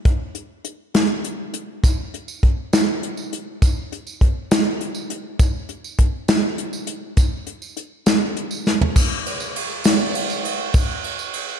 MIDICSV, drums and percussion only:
0, 0, Header, 1, 2, 480
1, 0, Start_track
1, 0, Tempo, 594059
1, 47, Time_signature, 6, 3, 24, 8
1, 9370, End_track
2, 0, Start_track
2, 0, Title_t, "Drums"
2, 42, Note_on_c, 9, 42, 90
2, 43, Note_on_c, 9, 36, 102
2, 123, Note_off_c, 9, 42, 0
2, 124, Note_off_c, 9, 36, 0
2, 281, Note_on_c, 9, 42, 62
2, 362, Note_off_c, 9, 42, 0
2, 522, Note_on_c, 9, 42, 69
2, 602, Note_off_c, 9, 42, 0
2, 763, Note_on_c, 9, 42, 90
2, 767, Note_on_c, 9, 38, 114
2, 843, Note_off_c, 9, 42, 0
2, 848, Note_off_c, 9, 38, 0
2, 1004, Note_on_c, 9, 42, 67
2, 1085, Note_off_c, 9, 42, 0
2, 1240, Note_on_c, 9, 42, 66
2, 1321, Note_off_c, 9, 42, 0
2, 1484, Note_on_c, 9, 36, 106
2, 1484, Note_on_c, 9, 42, 85
2, 1488, Note_on_c, 9, 54, 101
2, 1564, Note_off_c, 9, 36, 0
2, 1565, Note_off_c, 9, 42, 0
2, 1569, Note_off_c, 9, 54, 0
2, 1728, Note_on_c, 9, 42, 53
2, 1809, Note_off_c, 9, 42, 0
2, 1843, Note_on_c, 9, 54, 68
2, 1924, Note_off_c, 9, 54, 0
2, 1964, Note_on_c, 9, 36, 76
2, 1964, Note_on_c, 9, 42, 63
2, 2045, Note_off_c, 9, 36, 0
2, 2045, Note_off_c, 9, 42, 0
2, 2205, Note_on_c, 9, 54, 92
2, 2206, Note_on_c, 9, 42, 84
2, 2210, Note_on_c, 9, 38, 112
2, 2286, Note_off_c, 9, 42, 0
2, 2286, Note_off_c, 9, 54, 0
2, 2290, Note_off_c, 9, 38, 0
2, 2449, Note_on_c, 9, 42, 60
2, 2530, Note_off_c, 9, 42, 0
2, 2564, Note_on_c, 9, 54, 68
2, 2644, Note_off_c, 9, 54, 0
2, 2688, Note_on_c, 9, 42, 70
2, 2769, Note_off_c, 9, 42, 0
2, 2926, Note_on_c, 9, 36, 104
2, 2927, Note_on_c, 9, 42, 85
2, 2927, Note_on_c, 9, 54, 88
2, 3006, Note_off_c, 9, 36, 0
2, 3007, Note_off_c, 9, 54, 0
2, 3008, Note_off_c, 9, 42, 0
2, 3170, Note_on_c, 9, 42, 60
2, 3251, Note_off_c, 9, 42, 0
2, 3286, Note_on_c, 9, 54, 65
2, 3367, Note_off_c, 9, 54, 0
2, 3404, Note_on_c, 9, 36, 80
2, 3407, Note_on_c, 9, 42, 71
2, 3485, Note_off_c, 9, 36, 0
2, 3488, Note_off_c, 9, 42, 0
2, 3646, Note_on_c, 9, 42, 101
2, 3646, Note_on_c, 9, 54, 88
2, 3650, Note_on_c, 9, 38, 116
2, 3726, Note_off_c, 9, 42, 0
2, 3727, Note_off_c, 9, 54, 0
2, 3730, Note_off_c, 9, 38, 0
2, 3884, Note_on_c, 9, 42, 76
2, 3965, Note_off_c, 9, 42, 0
2, 3996, Note_on_c, 9, 54, 70
2, 4077, Note_off_c, 9, 54, 0
2, 4121, Note_on_c, 9, 42, 81
2, 4202, Note_off_c, 9, 42, 0
2, 4358, Note_on_c, 9, 42, 90
2, 4358, Note_on_c, 9, 54, 98
2, 4359, Note_on_c, 9, 36, 108
2, 4439, Note_off_c, 9, 42, 0
2, 4439, Note_off_c, 9, 54, 0
2, 4440, Note_off_c, 9, 36, 0
2, 4597, Note_on_c, 9, 42, 62
2, 4677, Note_off_c, 9, 42, 0
2, 4722, Note_on_c, 9, 54, 65
2, 4803, Note_off_c, 9, 54, 0
2, 4836, Note_on_c, 9, 42, 73
2, 4838, Note_on_c, 9, 36, 76
2, 4917, Note_off_c, 9, 42, 0
2, 4918, Note_off_c, 9, 36, 0
2, 5076, Note_on_c, 9, 54, 103
2, 5077, Note_on_c, 9, 42, 104
2, 5081, Note_on_c, 9, 38, 115
2, 5157, Note_off_c, 9, 54, 0
2, 5158, Note_off_c, 9, 42, 0
2, 5162, Note_off_c, 9, 38, 0
2, 5317, Note_on_c, 9, 42, 69
2, 5398, Note_off_c, 9, 42, 0
2, 5437, Note_on_c, 9, 54, 74
2, 5518, Note_off_c, 9, 54, 0
2, 5551, Note_on_c, 9, 42, 72
2, 5632, Note_off_c, 9, 42, 0
2, 5793, Note_on_c, 9, 42, 93
2, 5795, Note_on_c, 9, 36, 97
2, 5797, Note_on_c, 9, 54, 107
2, 5873, Note_off_c, 9, 42, 0
2, 5876, Note_off_c, 9, 36, 0
2, 5878, Note_off_c, 9, 54, 0
2, 6032, Note_on_c, 9, 42, 61
2, 6113, Note_off_c, 9, 42, 0
2, 6156, Note_on_c, 9, 54, 72
2, 6237, Note_off_c, 9, 54, 0
2, 6275, Note_on_c, 9, 42, 67
2, 6275, Note_on_c, 9, 54, 33
2, 6356, Note_off_c, 9, 42, 0
2, 6356, Note_off_c, 9, 54, 0
2, 6514, Note_on_c, 9, 54, 99
2, 6515, Note_on_c, 9, 42, 89
2, 6519, Note_on_c, 9, 38, 117
2, 6595, Note_off_c, 9, 54, 0
2, 6596, Note_off_c, 9, 42, 0
2, 6600, Note_off_c, 9, 38, 0
2, 6758, Note_on_c, 9, 42, 66
2, 6839, Note_off_c, 9, 42, 0
2, 6874, Note_on_c, 9, 54, 73
2, 6955, Note_off_c, 9, 54, 0
2, 6997, Note_on_c, 9, 54, 35
2, 7004, Note_on_c, 9, 38, 63
2, 7078, Note_off_c, 9, 54, 0
2, 7085, Note_off_c, 9, 38, 0
2, 7122, Note_on_c, 9, 43, 87
2, 7203, Note_off_c, 9, 43, 0
2, 7238, Note_on_c, 9, 54, 104
2, 7239, Note_on_c, 9, 36, 102
2, 7240, Note_on_c, 9, 49, 120
2, 7319, Note_off_c, 9, 54, 0
2, 7320, Note_off_c, 9, 36, 0
2, 7321, Note_off_c, 9, 49, 0
2, 7482, Note_on_c, 9, 51, 66
2, 7563, Note_off_c, 9, 51, 0
2, 7596, Note_on_c, 9, 54, 72
2, 7677, Note_off_c, 9, 54, 0
2, 7724, Note_on_c, 9, 51, 76
2, 7805, Note_off_c, 9, 51, 0
2, 7836, Note_on_c, 9, 54, 32
2, 7917, Note_off_c, 9, 54, 0
2, 7952, Note_on_c, 9, 54, 89
2, 7959, Note_on_c, 9, 51, 110
2, 7963, Note_on_c, 9, 38, 110
2, 8033, Note_off_c, 9, 54, 0
2, 8040, Note_off_c, 9, 51, 0
2, 8044, Note_off_c, 9, 38, 0
2, 8196, Note_on_c, 9, 54, 28
2, 8200, Note_on_c, 9, 51, 77
2, 8277, Note_off_c, 9, 54, 0
2, 8281, Note_off_c, 9, 51, 0
2, 8321, Note_on_c, 9, 54, 74
2, 8401, Note_off_c, 9, 54, 0
2, 8442, Note_on_c, 9, 51, 76
2, 8523, Note_off_c, 9, 51, 0
2, 8677, Note_on_c, 9, 54, 87
2, 8680, Note_on_c, 9, 36, 114
2, 8681, Note_on_c, 9, 51, 90
2, 8758, Note_off_c, 9, 54, 0
2, 8761, Note_off_c, 9, 36, 0
2, 8762, Note_off_c, 9, 51, 0
2, 8921, Note_on_c, 9, 51, 62
2, 9002, Note_off_c, 9, 51, 0
2, 9041, Note_on_c, 9, 54, 68
2, 9121, Note_off_c, 9, 54, 0
2, 9158, Note_on_c, 9, 51, 66
2, 9238, Note_off_c, 9, 51, 0
2, 9280, Note_on_c, 9, 54, 32
2, 9361, Note_off_c, 9, 54, 0
2, 9370, End_track
0, 0, End_of_file